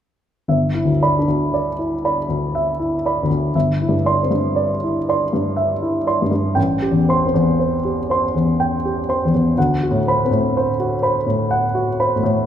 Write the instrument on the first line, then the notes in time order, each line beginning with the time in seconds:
grand piano
0.48 G1 E5
0.75 E4
0.85 D2
1.02 D5 B5
1.19 D4
1.28 D2
1.54 D5
1.79 E4
2.05 D5 B5
2.29 D2
2.55 E5
2.80 E4
3.06 D5 B5
3.23 D2
3.30 D2
3.55 G1 E5
3.81 E4
3.89 G2
4.06 D5 C6
4.23 C4
4.31 G2
4.56 D5
4.84 E4
5.09 D5 C6
5.33 G2
5.56 E5
5.82 E4
6.07 D5 C6
6.22 G2
6.31 G2
6.55 A1 G5
6.82 G4
6.91 E2
7.09 C5 C6
7.26 C4
7.34 E2
7.60 C5
7.85 G4
8.10 C5 C6
8.35 E2
8.60 G5
8.85 G4
9.09 C5 C6
9.25 E2
9.34 E2
9.57 D2 F#5
9.83 F#4
9.91 A2
10.08 C5 B5
10.25 C4
10.31 A2
10.57 C5
10.80 F#4
11.03 C5 B5
11.27 A2
11.51 F#5
11.75 F#4
12.00 C5 B5
12.16 A2
12.23 A2